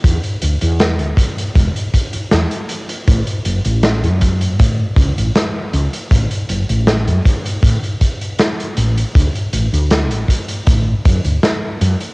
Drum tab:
HH |xxxxxxxxxxxxxxxx|xxxxxxxxx-xxx-xx|xxxxxxxxxxxxxxxx|xxxxxxxxx-xxx-xx|
SD |----o-------o---|----o-------o---|----o-------o---|----o-------o---|
BD |o-----o-o-o-----|o-----o-o-o-----|o-----o-o-o-----|o-----o-o-o-----|